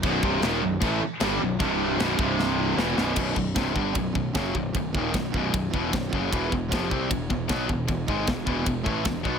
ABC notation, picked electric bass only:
X:1
M:4/4
L:1/8
Q:1/4=153
K:none
V:1 name="Picked electric bass" clef=bass
B,,,, C,,, ^D,,, B,,,, A,,, z G,,, B,,,, | C,,,2 B,,,, C,,,3 E,,, B,,,, | B,,,, B,,,, C,,, G,,, B,,,, B,,,, ^F,,, B,,,, | B,,,, ^D,,, B,,,, B,,,, B,,,, E,,, B,,,, ^F,,, |
E,,, E,,, ^E,,, C,, =E,,, E,,, B,,, E,,, | E,,, ^G,,, E,,, E,,, E,,, A,,, E,,, B,,, |]